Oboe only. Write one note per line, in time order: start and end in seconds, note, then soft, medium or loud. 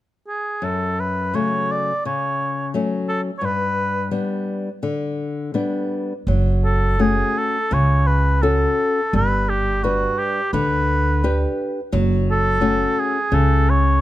0.28 0.66 G#4 medium
0.64 1.02 A4 medium
1.00 1.37 B4 medium
1.35 1.73 C#5 medium
1.72 2.06 D5 medium
2.06 2.71 C#5 medium
3.09 3.21 A4 medium
3.39 3.47 C#5 medium
3.45 4.13 B4 medium
6.65 7.03 A4 medium
7.01 7.39 G#4 medium
7.38 7.75 A4 medium
7.74 8.08 C#5 medium
8.07 8.44 B4 medium
8.42 9.13 A4 medium
9.16 9.51 B4 medium
9.49 9.85 G4 medium
9.83 10.20 F#4 medium
10.18 10.53 G4 medium
10.53 11.54 B4 medium
12.31 13.01 A4 medium
13.00 13.36 G#4 medium
13.34 13.71 A4 medium
13.70 14.01 C#5 medium